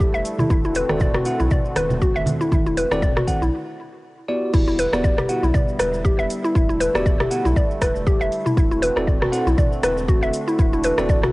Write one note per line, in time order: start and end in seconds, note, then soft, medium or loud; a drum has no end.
0.00 0.47 D3 medium
0.00 0.47 G3 medium
0.00 3.49 A3 medium
0.00 0.47 E4 medium
0.00 0.13 G4 loud
0.00 kick loud
0.00 shaker medium
0.14 0.21 E1 loud
0.14 0.24 E5 loud
0.14 shaker soft
0.25 open hi-hat medium
0.25 shaker medium
0.38 0.49 E4 medium
0.38 mid tom medium
0.38 high conga medium
0.38 low conga medium
0.38 shaker soft
0.50 0.82 E1 loud
0.50 3.50 D3 medium
0.50 3.50 C4 medium
0.50 0.58 E4 medium
0.50 3.50 F#4 medium
0.50 kick loud
0.50 high conga medium
0.50 shaker soft
0.64 0.75 E4 medium
0.64 shaker soft
0.75 0.88 B4 loud
0.75 open hi-hat medium
0.75 shaker medium
0.89 1.20 E1 loud
0.89 1.10 C4 medium
0.89 1.10 E4 medium
0.89 1.10 F#4 medium
0.89 1.10 A4 medium
0.89 1.10 D5 loud
0.89 cross-stick medium
0.89 high conga medium
0.89 shaker soft
1.00 1.14 D5 medium
1.00 kick loud
1.00 low conga loud
1.00 shaker soft
1.14 1.25 F#4 medium
1.14 cross-stick medium
1.14 mid tom medium
1.14 shaker soft
1.25 1.41 C4 medium
1.25 1.41 E4 medium
1.25 1.41 F#4 medium
1.25 1.41 A4 medium
1.25 1.41 F#5 medium
1.25 open hi-hat medium
1.25 shaker medium
1.40 1.48 B1 loud
1.40 1.50 E4 medium
1.40 shaker soft
1.51 1.64 D5 medium
1.51 kick loud
1.51 mid tom medium
1.51 shaker soft
1.65 shaker soft
1.75 2.08 E1 medium
1.75 1.89 B4 loud
1.75 cross-stick medium
1.75 open hi-hat medium
1.75 high conga medium
1.75 shaker medium
1.90 mid tom medium
1.90 low conga medium
1.90 shaker soft
2.02 2.14 F#4 loud
2.02 kick loud
2.02 shaker medium
2.15 2.23 E1 medium
2.15 2.26 E5 loud
2.15 high conga medium
2.15 shaker soft
2.26 open hi-hat medium
2.26 high conga loud
2.26 low conga loud
2.26 shaker medium
2.41 2.51 E4 medium
2.41 shaker soft
2.51 2.84 E1 loud
2.51 2.60 E4 medium
2.51 kick loud
2.51 high conga medium
2.51 shaker soft
2.66 2.77 E4 medium
2.66 shaker soft
2.77 2.90 B4 loud
2.77 open hi-hat loud
2.77 shaker medium
2.91 3.22 E1 medium
2.91 3.12 C4 medium
2.91 3.12 E4 medium
2.91 3.12 F#4 medium
2.91 3.12 A4 medium
2.91 3.12 D5 medium
2.91 cross-stick medium
2.91 high conga medium
2.91 shaker soft
3.02 3.16 D5 medium
3.02 kick loud
3.02 low conga loud
3.02 shaker medium
3.17 3.27 F#4 medium
3.17 cross-stick medium
3.17 mid tom medium
3.17 shaker soft
3.27 3.42 C4 medium
3.27 3.42 E4 medium
3.27 3.42 F#4 medium
3.27 3.42 A4 medium
3.27 3.42 F#5 medium
3.27 kick medium
3.27 open hi-hat medium
3.27 high conga medium
3.27 shaker medium
3.42 3.49 B1 loud
3.42 3.52 E4 medium
3.42 shaker soft
4.28 4.79 B3 medium
4.28 4.79 E4 medium
4.28 4.79 F#4 medium
4.28 4.79 G4 medium
4.28 4.79 D5 medium
4.53 4.86 E1 loud
4.53 11.32 D3 medium
4.53 8.53 G3 medium
4.53 6.53 B3 medium
4.53 8.53 E4 medium
4.53 4.61 E4 medium
4.53 kick loud
4.53 crash loud
4.53 shaker medium
4.68 4.78 E4 medium
4.68 shaker soft
4.79 4.92 B4 loud
4.79 open hi-hat loud
4.79 shaker loud
4.93 5.23 E1 medium
4.93 5.14 B3 medium
4.93 5.14 E4 medium
4.93 5.14 F#4 medium
4.93 5.14 G4 medium
4.93 5.14 D5 loud
4.93 cross-stick medium
4.93 shaker soft
5.04 5.18 D5 medium
5.04 kick loud
5.04 shaker medium
5.18 5.29 G4 medium
5.18 cross-stick medium
5.18 mid tom medium
5.18 shaker soft
5.29 5.44 B3 medium
5.29 5.44 E4 medium
5.29 5.44 F#4 medium
5.29 5.44 G4 medium
5.29 5.44 F#5 medium
5.29 open hi-hat medium
5.29 shaker loud
5.43 5.51 B1 loud
5.43 5.54 E4 medium
5.43 shaker soft
5.54 5.67 D5 medium
5.54 kick loud
5.54 mid tom medium
5.54 shaker medium
5.69 shaker soft
5.79 6.12 E1 medium
5.79 5.92 B4 loud
5.79 cross-stick medium
5.79 open hi-hat medium
5.79 shaker medium
5.94 shaker soft
6.05 6.18 G4 loud
6.05 kick loud
6.05 shaker medium
6.19 6.27 E1 medium
6.19 6.29 E5 loud
6.19 shaker soft
6.30 open hi-hat medium
6.30 shaker loud
6.44 6.54 E4 medium
6.44 shaker soft
6.55 6.87 E1 medium
6.55 8.55 A3 medium
6.55 6.63 E4 medium
6.55 kick loud
6.55 shaker medium
6.69 6.80 E4 medium
6.69 shaker soft
6.80 6.93 B4 loud
6.80 open hi-hat medium
6.80 shaker loud
6.95 7.25 E1 medium
6.95 7.15 B3 medium
6.95 7.15 E4 medium
6.95 7.15 F#4 medium
6.95 7.16 G4 medium
6.95 7.16 D5 loud
6.95 cross-stick medium
6.95 shaker soft
7.06 7.19 D5 medium
7.06 kick loud
7.06 shaker medium
7.20 7.31 G4 medium
7.20 cross-stick medium
7.20 mid tom medium
7.20 shaker soft
7.31 7.46 B3 medium
7.31 7.46 E4 medium
7.31 7.46 F#4 medium
7.31 7.46 G4 medium
7.31 7.46 F#5 medium
7.31 open hi-hat medium
7.31 shaker loud
7.45 7.53 B1 loud
7.45 7.56 E4 medium
7.45 shaker soft
7.56 7.69 D5 medium
7.56 kick loud
7.56 shaker medium
7.71 shaker soft
7.81 8.13 E1 medium
7.81 7.94 B4 loud
7.81 kick medium
7.81 cross-stick medium
7.81 open hi-hat medium
7.81 shaker loud
7.96 shaker soft
8.07 8.19 G4 loud
8.07 kick loud
8.07 shaker medium
8.21 8.28 E1 loud
8.21 8.31 E5 loud
8.21 shaker soft
8.32 open hi-hat medium
8.32 shaker loud
8.46 8.56 E4 medium
8.46 mid tom medium
8.46 shaker soft
8.57 8.89 E1 loud
8.57 11.32 A3 medium
8.57 10.57 C4 medium
8.57 8.65 E4 medium
8.57 11.32 F#4 medium
8.57 kick loud
8.57 shaker medium
8.71 8.82 E4 medium
8.71 shaker soft
8.82 8.95 B4 loud
8.82 open hi-hat medium
8.82 shaker loud
8.96 9.27 E1 loud
8.96 9.17 C4 medium
8.96 9.17 E4 medium
8.96 9.17 F#4 medium
8.96 9.17 A4 medium
8.96 9.17 D5 loud
8.96 cross-stick medium
8.96 shaker soft
9.07 9.21 D5 medium
9.07 kick loud
9.07 shaker medium
9.22 9.32 F#4 medium
9.22 cross-stick loud
9.22 mid tom medium
9.22 shaker soft
9.32 9.47 C4 medium
9.32 9.47 E4 medium
9.32 9.47 F#4 medium
9.32 9.47 A4 medium
9.32 9.47 F#5 medium
9.32 open hi-hat medium
9.32 shaker loud
9.47 9.54 B1 loud
9.47 9.57 E4 medium
9.47 shaker soft
9.58 9.71 D5 medium
9.58 kick loud
9.58 mid tom medium
9.58 shaker medium
9.72 shaker soft
9.83 10.15 E1 medium
9.83 9.96 B4 loud
9.83 cross-stick medium
9.83 open hi-hat medium
9.83 shaker loud
9.98 shaker soft
10.08 10.21 F#4 loud
10.08 kick loud
10.08 shaker medium
10.22 10.30 E1 medium
10.22 10.32 E5 loud
10.22 shaker soft
10.33 open hi-hat medium
10.33 shaker loud
10.48 10.57 E4 medium
10.48 shaker soft
10.58 10.91 E1 loud
10.58 11.32 D4 medium
10.58 10.66 E4 medium
10.58 kick loud
10.58 shaker medium
10.73 10.83 E4 medium
10.73 shaker soft
10.84 10.97 B4 loud
10.84 open hi-hat medium
10.84 shaker medium
10.98 11.29 E1 loud
10.98 11.19 C4 medium
10.98 11.19 E4 medium
10.98 11.19 F#4 medium
10.98 11.19 A4 medium
10.98 11.19 D5 loud
10.98 cross-stick medium
10.98 shaker soft
11.09 11.23 D5 medium
11.09 kick loud
11.09 shaker medium
11.24 11.32 F#4 medium
11.24 cross-stick medium
11.24 mid tom medium
11.24 shaker soft